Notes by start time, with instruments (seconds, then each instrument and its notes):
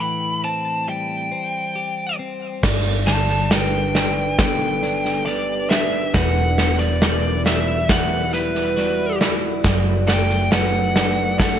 Already playing: clean electric guitar A2
0.00 clean electric guitar E3, lead electric guitar B5
0.44 clean electric guitar C4, lead electric guitar A5
0.88 clean electric guitar G3, lead electric guitar G5
1.32 clean electric guitar C4
1.76 clean electric guitar G4
2.19 clean electric guitar C4
2.63 fingered electric bass G1, clean electric guitar G2, ambient pad G3 D4 B4 D5, vibraphone D5, kick, snare, crash
3.07 clean electric guitar D3, lead electric guitar A5, snare
3.29 snare
3.51 clean electric guitar G3, vibraphone B4, lead electric guitar G5, snare
3.95 clean electric guitar D4, snare
4.39 clean electric guitar B3, vibraphone A4, lead electric guitar G5, kick, snare
4.83 clean electric guitar D4, snare
5.05 snare
5.26 clean electric guitar G4, vibraphone B4, lead electric guitar D5, snare
5.70 clean electric guitar D4, lead electric guitar E5, snare
6.14 fingered electric bass E1, clean electric guitar E2, ambient pad F#4 B4 E5, vibraphone B4, lead electric guitar F#5, kick, snare
6.58 clean electric guitar B2, snare
6.79 lead electric guitar D5, snare
7.01 clean electric guitar E3, vibraphone D5, snare
7.45 clean electric guitar E4, lead electric guitar E5, snare
7.89 clean electric guitar G3, vibraphone E5, lead electric guitar F#5, kick, snare
8.33 clean electric guitar E4, lead electric guitar B4, snare
8.55 snare
8.77 clean electric guitar F#4, vibraphone D5, snare
9.21 clean electric guitar E4, snare
9.64 fingered electric bass F#1, clean electric guitar F#3, ambient pad F#3 D4 A4 D5, vibraphone D5, kick, snare
10.08 clean electric guitar A3, lead electric guitar G5, snare
10.30 snare
10.52 clean electric guitar F#3, vibraphone B4, lead electric guitar F#5, snare
10.95 clean electric guitar D4, snare
11.39 clean electric guitar A3, vibraphone A4, lead electric guitar F#5, kick, snare